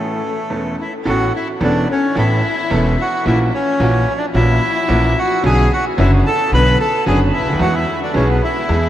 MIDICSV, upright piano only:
0, 0, Header, 1, 2, 480
1, 0, Start_track
1, 0, Key_signature, 3, "major"
1, 0, Tempo, 546448
1, 930, Time_signature, 4, 2, 24, 8
1, 7812, End_track
2, 0, Start_track
2, 0, Title_t, "Upright piano"
2, 0, Program_c, 0, 0
2, 0, Note_on_c, 0, 33, 64
2, 0, Note_on_c, 0, 45, 64
2, 0, Note_on_c, 0, 52, 61
2, 0, Note_on_c, 0, 57, 51
2, 0, Note_on_c, 0, 61, 55
2, 0, Note_on_c, 0, 69, 59
2, 160, Note_off_c, 0, 52, 0
2, 162, Note_off_c, 0, 57, 0
2, 162, Note_off_c, 0, 61, 0
2, 163, Note_off_c, 0, 33, 0
2, 163, Note_off_c, 0, 45, 0
2, 164, Note_off_c, 0, 69, 0
2, 440, Note_on_c, 0, 52, 58
2, 440, Note_on_c, 0, 57, 53
2, 442, Note_on_c, 0, 40, 74
2, 444, Note_on_c, 0, 61, 58
2, 445, Note_on_c, 0, 28, 66
2, 446, Note_on_c, 0, 69, 64
2, 647, Note_off_c, 0, 52, 0
2, 647, Note_off_c, 0, 57, 0
2, 648, Note_off_c, 0, 40, 0
2, 649, Note_off_c, 0, 28, 0
2, 649, Note_off_c, 0, 61, 0
2, 650, Note_off_c, 0, 69, 0
2, 925, Note_on_c, 0, 52, 68
2, 926, Note_on_c, 0, 45, 85
2, 928, Note_on_c, 0, 33, 90
2, 930, Note_on_c, 0, 59, 65
2, 930, Note_on_c, 0, 61, 70
2, 931, Note_on_c, 0, 69, 83
2, 1130, Note_off_c, 0, 52, 0
2, 1131, Note_off_c, 0, 45, 0
2, 1132, Note_off_c, 0, 33, 0
2, 1133, Note_off_c, 0, 59, 0
2, 1133, Note_off_c, 0, 61, 0
2, 1133, Note_off_c, 0, 69, 0
2, 1409, Note_on_c, 0, 52, 68
2, 1412, Note_on_c, 0, 40, 85
2, 1412, Note_on_c, 0, 59, 61
2, 1414, Note_on_c, 0, 61, 64
2, 1415, Note_on_c, 0, 28, 85
2, 1415, Note_on_c, 0, 69, 83
2, 1615, Note_off_c, 0, 52, 0
2, 1616, Note_off_c, 0, 59, 0
2, 1617, Note_off_c, 0, 40, 0
2, 1617, Note_off_c, 0, 61, 0
2, 1618, Note_off_c, 0, 28, 0
2, 1618, Note_off_c, 0, 69, 0
2, 1887, Note_on_c, 0, 59, 65
2, 1889, Note_on_c, 0, 52, 73
2, 1890, Note_on_c, 0, 45, 82
2, 1891, Note_on_c, 0, 61, 67
2, 1892, Note_on_c, 0, 69, 79
2, 1893, Note_on_c, 0, 33, 81
2, 2094, Note_off_c, 0, 59, 0
2, 2095, Note_off_c, 0, 45, 0
2, 2095, Note_off_c, 0, 52, 0
2, 2096, Note_off_c, 0, 61, 0
2, 2097, Note_off_c, 0, 33, 0
2, 2097, Note_off_c, 0, 69, 0
2, 2371, Note_on_c, 0, 52, 68
2, 2372, Note_on_c, 0, 59, 76
2, 2374, Note_on_c, 0, 28, 89
2, 2376, Note_on_c, 0, 40, 85
2, 2378, Note_on_c, 0, 61, 71
2, 2379, Note_on_c, 0, 69, 83
2, 2576, Note_off_c, 0, 52, 0
2, 2576, Note_off_c, 0, 59, 0
2, 2578, Note_off_c, 0, 28, 0
2, 2578, Note_off_c, 0, 40, 0
2, 2579, Note_off_c, 0, 61, 0
2, 2580, Note_off_c, 0, 69, 0
2, 2859, Note_on_c, 0, 52, 78
2, 2860, Note_on_c, 0, 46, 93
2, 2861, Note_on_c, 0, 34, 86
2, 2862, Note_on_c, 0, 58, 72
2, 2865, Note_on_c, 0, 66, 81
2, 2866, Note_on_c, 0, 61, 70
2, 3059, Note_off_c, 0, 46, 0
2, 3059, Note_off_c, 0, 52, 0
2, 3060, Note_off_c, 0, 34, 0
2, 3060, Note_off_c, 0, 58, 0
2, 3062, Note_off_c, 0, 61, 0
2, 3062, Note_off_c, 0, 66, 0
2, 3337, Note_on_c, 0, 46, 90
2, 3337, Note_on_c, 0, 52, 79
2, 3338, Note_on_c, 0, 34, 92
2, 3340, Note_on_c, 0, 58, 70
2, 3340, Note_on_c, 0, 61, 70
2, 3340, Note_on_c, 0, 66, 85
2, 3538, Note_off_c, 0, 34, 0
2, 3538, Note_off_c, 0, 46, 0
2, 3538, Note_off_c, 0, 52, 0
2, 3540, Note_off_c, 0, 58, 0
2, 3540, Note_off_c, 0, 61, 0
2, 3540, Note_off_c, 0, 66, 0
2, 3813, Note_on_c, 0, 52, 71
2, 3814, Note_on_c, 0, 46, 85
2, 3815, Note_on_c, 0, 58, 74
2, 3817, Note_on_c, 0, 66, 84
2, 3818, Note_on_c, 0, 34, 86
2, 3818, Note_on_c, 0, 61, 63
2, 4015, Note_off_c, 0, 52, 0
2, 4016, Note_off_c, 0, 46, 0
2, 4016, Note_off_c, 0, 58, 0
2, 4017, Note_off_c, 0, 66, 0
2, 4018, Note_off_c, 0, 34, 0
2, 4018, Note_off_c, 0, 61, 0
2, 4289, Note_on_c, 0, 34, 101
2, 4289, Note_on_c, 0, 46, 100
2, 4290, Note_on_c, 0, 58, 72
2, 4290, Note_on_c, 0, 61, 68
2, 4291, Note_on_c, 0, 52, 73
2, 4294, Note_on_c, 0, 66, 88
2, 4493, Note_off_c, 0, 34, 0
2, 4493, Note_off_c, 0, 46, 0
2, 4493, Note_off_c, 0, 58, 0
2, 4493, Note_off_c, 0, 61, 0
2, 4494, Note_off_c, 0, 52, 0
2, 4495, Note_off_c, 0, 66, 0
2, 4769, Note_on_c, 0, 50, 78
2, 4773, Note_on_c, 0, 61, 72
2, 4775, Note_on_c, 0, 35, 93
2, 4775, Note_on_c, 0, 47, 92
2, 4775, Note_on_c, 0, 59, 71
2, 4779, Note_on_c, 0, 66, 87
2, 4972, Note_off_c, 0, 50, 0
2, 4974, Note_off_c, 0, 61, 0
2, 4975, Note_off_c, 0, 35, 0
2, 4975, Note_off_c, 0, 47, 0
2, 4975, Note_off_c, 0, 59, 0
2, 4977, Note_off_c, 0, 66, 0
2, 5250, Note_on_c, 0, 50, 69
2, 5250, Note_on_c, 0, 61, 75
2, 5251, Note_on_c, 0, 42, 98
2, 5253, Note_on_c, 0, 30, 99
2, 5253, Note_on_c, 0, 59, 67
2, 5254, Note_on_c, 0, 66, 88
2, 5450, Note_off_c, 0, 50, 0
2, 5450, Note_off_c, 0, 61, 0
2, 5451, Note_off_c, 0, 42, 0
2, 5452, Note_off_c, 0, 30, 0
2, 5452, Note_off_c, 0, 59, 0
2, 5452, Note_off_c, 0, 66, 0
2, 5729, Note_on_c, 0, 50, 76
2, 5731, Note_on_c, 0, 59, 73
2, 5733, Note_on_c, 0, 61, 65
2, 5734, Note_on_c, 0, 35, 79
2, 5735, Note_on_c, 0, 47, 87
2, 5735, Note_on_c, 0, 66, 80
2, 5929, Note_off_c, 0, 50, 0
2, 5929, Note_off_c, 0, 59, 0
2, 5930, Note_off_c, 0, 61, 0
2, 5931, Note_off_c, 0, 35, 0
2, 5931, Note_off_c, 0, 47, 0
2, 5931, Note_off_c, 0, 66, 0
2, 6199, Note_on_c, 0, 50, 78
2, 6202, Note_on_c, 0, 61, 65
2, 6203, Note_on_c, 0, 42, 86
2, 6204, Note_on_c, 0, 30, 89
2, 6205, Note_on_c, 0, 59, 68
2, 6208, Note_on_c, 0, 66, 85
2, 6401, Note_off_c, 0, 50, 0
2, 6403, Note_off_c, 0, 42, 0
2, 6403, Note_off_c, 0, 61, 0
2, 6404, Note_off_c, 0, 30, 0
2, 6404, Note_off_c, 0, 59, 0
2, 6406, Note_off_c, 0, 66, 0
2, 6495, Note_on_c, 0, 37, 48
2, 6558, Note_off_c, 0, 37, 0
2, 6561, Note_on_c, 0, 38, 72
2, 6610, Note_on_c, 0, 39, 89
2, 6621, Note_off_c, 0, 38, 0
2, 6669, Note_on_c, 0, 52, 88
2, 6669, Note_on_c, 0, 59, 61
2, 6671, Note_on_c, 0, 56, 69
2, 6672, Note_on_c, 0, 40, 95
2, 6675, Note_off_c, 0, 39, 0
2, 6676, Note_on_c, 0, 68, 82
2, 6876, Note_off_c, 0, 59, 0
2, 6877, Note_off_c, 0, 40, 0
2, 6877, Note_off_c, 0, 56, 0
2, 6878, Note_off_c, 0, 52, 0
2, 6879, Note_off_c, 0, 68, 0
2, 7148, Note_on_c, 0, 56, 65
2, 7149, Note_on_c, 0, 52, 76
2, 7151, Note_on_c, 0, 47, 82
2, 7151, Note_on_c, 0, 59, 66
2, 7152, Note_on_c, 0, 35, 89
2, 7154, Note_on_c, 0, 68, 71
2, 7355, Note_off_c, 0, 52, 0
2, 7355, Note_off_c, 0, 56, 0
2, 7356, Note_off_c, 0, 47, 0
2, 7356, Note_off_c, 0, 59, 0
2, 7357, Note_off_c, 0, 35, 0
2, 7358, Note_off_c, 0, 68, 0
2, 7630, Note_on_c, 0, 56, 63
2, 7634, Note_on_c, 0, 52, 81
2, 7635, Note_on_c, 0, 40, 90
2, 7635, Note_on_c, 0, 59, 65
2, 7636, Note_on_c, 0, 68, 70
2, 7812, Note_off_c, 0, 40, 0
2, 7812, Note_off_c, 0, 52, 0
2, 7812, Note_off_c, 0, 56, 0
2, 7812, Note_off_c, 0, 59, 0
2, 7812, Note_off_c, 0, 68, 0
2, 7812, End_track
0, 0, End_of_file